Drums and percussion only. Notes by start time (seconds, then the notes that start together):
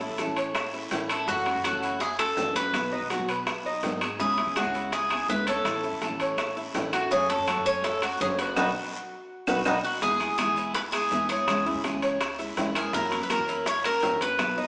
0.01 high bongo
0.18 high bongo, high timbale, short guiro, maracas
0.36 high timbale, short guiro, maracas
0.55 high bongo, high timbale, long guiro, claves, maracas
0.74 high bongo
0.91 high bongo, low bongo, high timbale, low timbale, short guiro, maracas
1.09 high bongo, high timbale, short guiro, claves, maracas
1.28 high bongo, long guiro, maracas
1.46 high bongo, high timbale
1.64 high bongo, high timbale, short guiro, claves, maracas
1.82 short guiro, maracas
2.01 high bongo, high timbale, long guiro, maracas
2.19 high bongo, high timbale, claves
2.37 high bongo, low bongo, low timbale, short guiro, maracas
2.55 high bongo, high timbale, short guiro, maracas
2.74 high bongo, high timbale, long guiro, claves, maracas
2.93 high bongo
3.10 high bongo, high timbale, short guiro, maracas
3.28 high timbale, short guiro, maracas
3.47 high bongo, high timbale, long guiro, claves, maracas
3.66 high bongo
3.83 high bongo, low bongo, high timbale, low timbale, short guiro, maracas
4.01 high bongo, high timbale, short guiro, claves, maracas
4.20 high bongo, long guiro, maracas
4.38 high bongo, high timbale
4.56 high bongo, high timbale, short guiro, claves, maracas
4.74 short guiro, maracas
4.92 high bongo, high timbale, long guiro, maracas
5.10 high bongo, high timbale, claves
5.29 high bongo, low bongo, short guiro, maracas
5.47 high bongo, high timbale, short guiro, maracas
5.65 high bongo, high timbale, long guiro, claves, maracas
5.83 high bongo
6.02 high bongo, high timbale, short guiro, maracas
6.20 high timbale, short guiro, maracas
6.38 high bongo, high timbale, long guiro, claves, maracas
6.56 high bongo
6.74 high bongo, low bongo, high timbale, low timbale, short guiro, maracas
6.93 high bongo, high timbale, short guiro, claves, maracas
7.11 high bongo, long guiro, maracas
7.30 high bongo, high timbale
7.47 high bongo, high timbale, short guiro, claves, maracas
7.65 short guiro, maracas
7.84 high bongo, high timbale, long guiro, maracas
8.02 high bongo, high timbale, claves
8.20 high bongo, low bongo, short guiro, maracas
8.38 high bongo, high timbale, short guiro, maracas
8.56 low bongo, high timbale, long guiro, claves, maracas
9.47 low bongo, high timbale, long guiro, claves, maracas
9.65 low bongo, high timbale, long guiro, claves, maracas
10.02 high bongo, long guiro, maracas
10.20 high bongo, high timbale, maracas
10.38 high bongo, high timbale, short guiro, claves, maracas
10.56 short guiro, maracas
10.75 high bongo, high timbale, long guiro, maracas
10.93 high bongo, high timbale, claves, maracas
11.11 high bongo, low bongo, short guiro, maracas
11.30 high bongo, high timbale, short guiro, maracas
11.48 high bongo, high timbale, long guiro, claves, maracas
11.66 high bongo
11.84 high bongo, high timbale, short guiro, maracas
12.02 high timbale, short guiro, maracas
12.21 high bongo, high timbale, long guiro, claves, maracas
12.39 high bongo, maracas
12.57 high bongo, low bongo, high timbale, low timbale, short guiro, maracas
12.75 high bongo, high timbale, short guiro, claves, maracas
12.93 high bongo, long guiro, maracas
13.12 high bongo, high timbale, maracas
13.30 high bongo, high timbale, short guiro, claves, maracas
13.48 short guiro, maracas
13.66 high bongo, high timbale, long guiro, maracas
13.84 high bongo, high timbale, claves
14.03 high bongo, low bongo, low timbale, short guiro, maracas
14.21 high bongo, high timbale, short guiro, maracas
14.39 high bongo, high timbale, long guiro, claves, maracas
14.57 high bongo